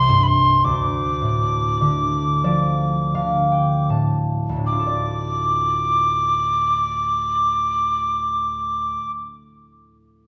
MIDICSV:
0, 0, Header, 1, 3, 480
1, 0, Start_track
1, 0, Key_signature, -1, "minor"
1, 0, Tempo, 1100917
1, 275, Time_signature, 3, 2, 24, 8
1, 275, Tempo, 1171875
1, 755, Tempo, 1336303
1, 1235, Tempo, 1538462
1, 2675, Tempo, 1612903
1, 3424, End_track
2, 0, Start_track
2, 0, Title_t, "Tin whistle"
2, 0, Program_c, 0, 75
2, 0, Note_on_c, 0, 84, 72
2, 101, Note_on_c, 0, 83, 49
2, 107, Note_off_c, 0, 84, 0
2, 120, Note_on_c, 0, 84, 72
2, 127, Note_off_c, 0, 83, 0
2, 280, Note_on_c, 0, 86, 81
2, 286, Note_off_c, 0, 84, 0
2, 1471, Note_off_c, 0, 86, 0
2, 1711, Note_on_c, 0, 86, 58
2, 3079, Note_off_c, 0, 86, 0
2, 3424, End_track
3, 0, Start_track
3, 0, Title_t, "Harp"
3, 0, Program_c, 1, 46
3, 0, Note_on_c, 1, 36, 44
3, 0, Note_on_c, 1, 48, 43
3, 37, Note_on_c, 1, 43, 38
3, 56, Note_off_c, 1, 48, 0
3, 279, Note_on_c, 1, 38, 51
3, 295, Note_off_c, 1, 36, 0
3, 295, Note_off_c, 1, 43, 0
3, 514, Note_on_c, 1, 45, 42
3, 757, Note_on_c, 1, 50, 45
3, 773, Note_off_c, 1, 45, 0
3, 983, Note_on_c, 1, 53, 43
3, 985, Note_on_c, 1, 74, 49
3, 1233, Note_off_c, 1, 50, 0
3, 1236, Note_on_c, 1, 50, 38
3, 1237, Note_on_c, 1, 77, 49
3, 1250, Note_off_c, 1, 53, 0
3, 1352, Note_on_c, 1, 79, 41
3, 1469, Note_on_c, 1, 45, 29
3, 1472, Note_on_c, 1, 81, 35
3, 1485, Note_off_c, 1, 50, 0
3, 1594, Note_off_c, 1, 74, 0
3, 1653, Note_off_c, 1, 38, 0
3, 1657, Note_on_c, 1, 38, 30
3, 1676, Note_off_c, 1, 45, 0
3, 1680, Note_on_c, 1, 45, 29
3, 1703, Note_on_c, 1, 60, 26
3, 1728, Note_on_c, 1, 65, 29
3, 1751, Note_on_c, 1, 69, 29
3, 1756, Note_off_c, 1, 77, 0
3, 1775, Note_on_c, 1, 74, 35
3, 1837, Note_off_c, 1, 79, 0
3, 1924, Note_off_c, 1, 81, 0
3, 3028, Note_off_c, 1, 38, 0
3, 3049, Note_off_c, 1, 45, 0
3, 3071, Note_off_c, 1, 60, 0
3, 3096, Note_off_c, 1, 65, 0
3, 3117, Note_off_c, 1, 69, 0
3, 3140, Note_off_c, 1, 74, 0
3, 3424, End_track
0, 0, End_of_file